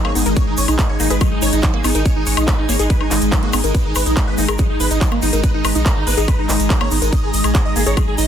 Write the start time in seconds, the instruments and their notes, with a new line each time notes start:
Already playing: ambient pad G#3, analog synth pad D#4 G#4 G#5
0.05 analog synth bass G#1, synth arpeggio sound A#3, supersaw synth C#5, high woodblock
0.15 analog synth bass G#1, synth arpeggio sound B3, supersaw synth D#4, open hi-hat, shaker
0.26 analog synth bass G#1, supersaw synth D#4, synth arpeggio sound A#4, closed hi-hat, shaker
0.36 supersaw synth C#5, kick, closed hi-hat, shaker
0.47 analog synth bass G#1, supersaw synth D#4
0.57 analog synth bass G#1, supersaw synth C#5, open hi-hat, shaker
0.68 analog synth bass A#1, supersaw synth D#4, closed hi-hat, high woodblock, shaker
0.79 synth arpeggio sound G#3, supersaw synth D#4, kick, clap, closed hi-hat, shaker
0.89 analog synth bass G#1, supersaw synth C#5
1.00 analog synth bass G#1, synth arpeggio sound A#3, supersaw synth D#4, open hi-hat, shaker
1.10 analog synth bass G#1, synth arpeggio sound G#4, supersaw synth B4, closed hi-hat, shaker
1.21 synth arpeggio sound F#3, supersaw synth D#4, kick, closed hi-hat, high woodblock, shaker
1.31 analog synth bass G#1, supersaw synth D#4
1.42 analog synth bass G#1, synth arpeggio sound D#4, supersaw synth C#5, open hi-hat, shaker
1.52 analog synth bass G#1, supersaw synth D#4, closed hi-hat, shaker
1.62 synth arpeggio sound F#3, supersaw synth D#4, kick, clap, closed hi-hat, shaker
1.74 analog synth bass G#1, synth arpeggio sound A#3
1.84 analog synth bass G#1, synth arpeggio sound B3, supersaw synth D#4, open hi-hat, high woodblock, shaker
1.95 analog synth bass G#1, supersaw synth D#4, synth arpeggio sound A#4, closed hi-hat, shaker
2.05 supersaw synth C#5, kick, closed hi-hat, shaker
2.16 analog synth bass G#1, supersaw synth D#4
2.26 analog synth bass G#1, supersaw synth C#5, open hi-hat, shaker
2.37 analog synth bass A#1, supersaw synth D#4, closed hi-hat, high woodblock, shaker
2.48 synth arpeggio sound G#3, supersaw synth B4, kick, clap, closed hi-hat, shaker
2.58 analog synth bass G#1, supersaw synth D#4
2.69 analog synth bass G#1, synth arpeggio sound A#3, supersaw synth C#5, open hi-hat, shaker
2.79 analog synth bass G#1, supersaw synth D#4, synth arpeggio sound G#4, closed hi-hat, shaker
2.90 synth arpeggio sound F#3, supersaw synth B4, kick, closed hi-hat, shaker
3.01 analog synth bass G#1, supersaw synth D#4, high woodblock
3.11 analog synth bass G#1, synth arpeggio sound D#4, supersaw synth D#4, clap, open hi-hat, shaker
3.21 analog synth bass G#1, closed hi-hat, shaker
3.32 synth arpeggio sound F#3, supersaw synth D#4, kick, clap, closed hi-hat, shaker
3.43 analog synth bass G#1, synth arpeggio sound A#3, supersaw synth F#4
3.53 analog synth bass G#1, synth arpeggio sound B3, supersaw synth D#4, open hi-hat, high woodblock, shaker
3.64 analog synth bass G#1, supersaw synth D#4, synth arpeggio sound A#4, closed hi-hat, shaker
3.74 supersaw synth B4, kick, closed hi-hat, shaker
3.85 analog synth bass G#1, supersaw synth D#4
3.95 analog synth bass G#1, supersaw synth B4, open hi-hat, high woodblock, shaker
4.06 analog synth bass A#1, supersaw synth D#4, closed hi-hat, shaker
4.17 synth arpeggio sound G#3, supersaw synth D#4, kick, clap, closed hi-hat, shaker
4.27 analog synth bass G#1, supersaw synth B4
4.38 analog synth bass G#1, synth arpeggio sound A#3, supersaw synth D#4, open hi-hat, shaker
4.48 analog synth bass G#1, synth arpeggio sound G#4, supersaw synth A#4, high woodblock, shaker
4.58 synth arpeggio sound F#3, supersaw synth D#4, analog synth pad A#5, kick, closed hi-hat, shaker
4.70 analog synth bass G#1, supersaw synth D#4
4.80 analog synth bass G#1, synth arpeggio sound D#4, supersaw synth B4, open hi-hat, shaker
4.91 analog synth bass G#1, supersaw synth D#4, closed hi-hat, shaker
5.01 synth arpeggio sound F#3, supersaw synth D#4, kick, clap, closed hi-hat, shaker
5.12 analog synth bass G#1, synth arpeggio sound A#3, high woodblock
5.22 analog synth bass G#1, synth arpeggio sound B3, supersaw synth D#4, open hi-hat, shaker
5.33 analog synth bass G#1, supersaw synth D#4, synth arpeggio sound A#4, closed hi-hat, shaker
5.43 supersaw synth B4, kick, closed hi-hat, shaker
5.54 analog synth bass G#1, supersaw synth D#4
5.65 analog synth bass G#1, supersaw synth B4, open hi-hat, high woodblock, shaker
5.75 analog synth bass A#1, supersaw synth D#4, closed hi-hat, shaker
5.86 synth arpeggio sound G#3, supersaw synth A#4, kick, clap, closed hi-hat, shaker
5.96 analog synth bass G#1, supersaw synth D#4
6.07 analog synth bass G#1, synth arpeggio sound A#3, supersaw synth B4, open hi-hat, shaker
6.17 analog synth bass G#1, supersaw synth D#4, synth arpeggio sound G#4, closed hi-hat, shaker
6.28 synth arpeggio sound F#3, supersaw synth B4, kick, closed hi-hat, high woodblock
6.39 analog synth bass G#1, supersaw synth D#4
6.49 analog synth bass G#1, synth arpeggio sound D#4, supersaw synth D#4, clap, open hi-hat, shaker
6.60 analog synth bass G#1, closed hi-hat, shaker
6.70 synth arpeggio sound F#3, supersaw synth D#4, kick, clap, closed hi-hat, shaker
6.81 analog synth bass G#1, synth arpeggio sound A#3, supersaw synth C#5, high woodblock
6.91 analog synth bass G#1, synth arpeggio sound B3, supersaw synth D#4, open hi-hat, shaker
7.02 analog synth bass G#1, supersaw synth D#4, synth arpeggio sound A#4, closed hi-hat, shaker
7.13 supersaw synth D#5, kick, closed hi-hat, shaker
7.23 analog synth bass G#1, supersaw synth G#4
7.34 analog synth bass G#1, supersaw synth D#5, open hi-hat, shaker
7.44 analog synth bass A#1, supersaw synth G#4, closed hi-hat, high woodblock, shaker
7.54 synth arpeggio sound G#3, supersaw synth G#4, kick, clap, closed hi-hat, shaker
7.65 analog synth bass G#1, supersaw synth D#5
7.76 analog synth bass G#1, synth arpeggio sound A#3, supersaw synth G#4, open hi-hat, shaker
7.86 analog synth bass G#1, synth arpeggio sound G#4, supersaw synth C#5, closed hi-hat, shaker
7.97 synth arpeggio sound F#3, supersaw synth G#4, kick, closed hi-hat, high woodblock, shaker
8.08 analog synth bass G#1, supersaw synth G#4
8.18 analog synth bass G#1, synth arpeggio sound D#4, supersaw synth D#5, open hi-hat, shaker